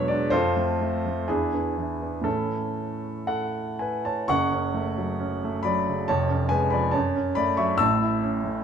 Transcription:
0.00 0.36 E2 medium
0.00 0.36 B2 medium
0.00 0.36 F#3 medium
0.00 0.10 G#3 soft
0.00 0.11 D4 medium
0.00 0.36 F#4 medium
0.00 0.36 G#4 medium
0.00 0.37 B4 medium
0.00 0.37 C#5 medium
0.00 0.36 E5 medium
0.08 0.31 G#3 soft
0.08 0.31 D4 medium
0.08 0.32 D5 medium
0.30 0.55 F2 medium
0.30 1.22 F4 medium
0.30 1.22 A4 medium
0.30 1.26 C5 loud
0.56 0.77 A3 soft
0.56 0.78 C4 soft
0.81 1.05 A3 medium
1.06 1.26 A3 soft
1.06 1.27 C4 soft
1.28 1.52 E2 medium
1.28 1.53 D4 medium
1.28 2.21 E4 medium
1.28 2.25 G#4 medium
1.54 1.74 B3 soft
1.54 1.74 D4 soft
1.78 2.16 E3 soft
2.02 2.24 B3 soft
2.02 2.24 D4 soft
2.21 4.21 A2 medium
2.21 4.21 E3 soft
2.21 4.22 A3 soft
2.21 3.25 E4 medium
2.21 3.27 A4 medium
2.26 3.25 C#4 soft
3.27 3.75 A4 medium
3.27 3.78 F#5 medium
3.79 4.03 B4 medium
3.79 4.03 G#5 medium
4.05 4.27 C#5 medium
4.05 4.28 A5 medium
4.28 6.05 F#1 medium
4.28 6.05 F#2 medium
4.28 5.62 F#5 medium
4.28 5.65 C#6 loud
4.52 4.89 C#4 medium
4.74 5.11 A3 medium
4.98 5.34 F#3 soft
5.20 5.55 C#4 medium
5.44 5.78 A3 medium
5.63 6.00 F#3 medium
5.63 6.05 D5 medium
5.63 6.07 B5 medium
5.88 6.09 C#3 soft
6.08 6.92 F1 medium
6.08 6.93 F2 medium
6.08 6.49 C#5 medium
6.08 6.51 A5 medium
6.30 6.64 C#4 medium
6.49 6.86 G#3 medium
6.49 6.71 B4 medium
6.49 6.71 G#5 medium
6.70 6.94 F3 soft
6.70 6.92 D5 medium
6.70 6.93 B5 medium
6.91 7.77 F#2 medium
6.91 7.33 C#5 medium
6.91 7.36 A5 medium
7.16 7.50 C#4 medium
7.35 7.71 A3 medium
7.35 7.56 D5 medium
7.35 7.57 B5 loud
7.57 7.80 F#3 medium
7.57 7.78 E5 medium
7.57 7.79 C#6 medium
7.78 8.64 A1 medium
7.78 8.64 A2 medium
7.78 8.64 A5 medium
7.78 8.64 E6 loud
8.02 8.35 E4 medium
8.23 8.57 C#4 medium
8.44 8.64 A3 soft

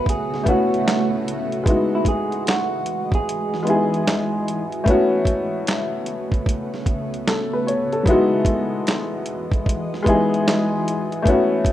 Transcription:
0.00 1.63 C#3 medium
0.00 0.44 A3 medium
0.00 1.63 A3 medium
0.00 0.45 B3 medium
0.00 1.63 B3 medium
0.00 0.47 C#4 medium
0.00 0.49 E4 medium
0.00 0.50 F#4 medium
0.00 11.21 F#4 medium
0.06 0.44 G#4 medium
0.06 kick medium
0.06 closed hi-hat medium
0.34 snare soft
0.44 1.25 A3 medium
0.44 1.25 B3 medium
0.44 1.26 C#4 medium
0.44 kick medium
0.44 closed hi-hat medium
0.48 1.27 E4 medium
0.48 1.09 F#4 medium
0.48 1.28 F#4 medium
0.74 closed hi-hat soft
0.88 snare loud
0.88 clap medium
0.88 closed hi-hat medium
1.28 closed hi-hat medium
1.52 closed hi-hat soft
1.64 4.83 E3 medium
1.64 2.75 G#3 medium
1.64 4.83 G#3 medium
1.64 2.76 B3 medium
1.64 2.77 D#4 medium
1.64 4.83 D#5 medium
1.64 kick loud
1.64 closed hi-hat medium
1.69 2.78 E4 medium
1.69 2.78 F#4 medium
1.95 2.06 E4 medium
2.05 2.43 G#4 medium
2.05 kick medium
2.05 closed hi-hat medium
2.32 closed hi-hat soft
2.47 3.09 F#4 medium
2.47 snare loud
2.47 clap medium
2.47 closed hi-hat medium
2.86 closed hi-hat medium
3.12 4.03 G#4 medium
3.12 kick loud
3.12 closed hi-hat soft
3.29 closed hi-hat medium
3.54 snare soft
3.63 4.44 G#3 medium
3.63 4.45 B3 medium
3.63 4.46 D#4 medium
3.67 4.47 E4 medium
3.67 4.48 G#4 medium
3.67 closed hi-hat medium
3.94 closed hi-hat soft
4.08 snare loud
4.08 clap medium
4.08 closed hi-hat medium
4.48 closed hi-hat medium
4.72 closed hi-hat soft
4.84 8.03 C#3 medium
4.84 5.95 A3 medium
4.84 8.03 A3 medium
4.84 5.96 B3 medium
4.84 8.03 B3 medium
4.84 5.97 C#4 medium
4.84 kick loud
4.84 closed hi-hat medium
4.89 5.98 E4 medium
4.89 5.98 F#4 loud
5.25 kick medium
5.25 closed hi-hat medium
5.67 snare loud
5.67 clap medium
5.67 closed hi-hat medium
6.06 closed hi-hat medium
6.32 kick medium
6.32 closed hi-hat soft
6.46 kick medium
6.46 closed hi-hat medium
6.74 snare soft
6.86 kick medium
6.86 closed hi-hat medium
7.14 closed hi-hat soft
7.27 7.51 A4 medium
7.27 snare loud
7.27 clap medium
7.27 closed hi-hat medium
7.53 7.66 B4 medium
7.67 7.91 C#5 medium
7.67 closed hi-hat medium
7.93 8.30 A4 medium
7.93 closed hi-hat soft
8.03 11.22 E3 medium
8.03 8.13 F#3 medium
8.03 11.22 G#3 medium
8.03 9.16 B3 medium
8.03 9.17 D#4 medium
8.03 11.22 D#5 medium
8.03 kick loud
8.07 9.18 G#3 medium
8.07 9.17 E4 medium
8.07 9.18 F#4 loud
8.07 closed hi-hat medium
8.45 kick medium
8.45 closed hi-hat medium
8.87 snare loud
8.87 clap medium
8.87 closed hi-hat medium
9.26 closed hi-hat medium
9.52 kick loud
9.52 closed hi-hat soft
9.66 kick medium
9.66 closed hi-hat medium
9.94 snare soft
10.03 10.84 G#3 medium
10.03 10.85 B3 medium
10.03 10.86 D#4 medium
10.03 kick medium
10.07 10.87 E4 medium
10.07 10.88 G#4 medium
10.07 closed hi-hat medium
10.34 closed hi-hat soft
10.48 snare loud
10.48 clap medium
10.48 closed hi-hat medium
10.88 closed hi-hat medium
11.12 closed hi-hat soft
11.22 11.73 A3 medium
11.22 11.73 B3 medium
11.22 11.73 C#4 medium
11.22 kick loud
11.27 11.73 E4 medium
11.27 11.73 F#4 medium
11.27 closed hi-hat medium
11.65 kick medium
11.65 closed hi-hat medium

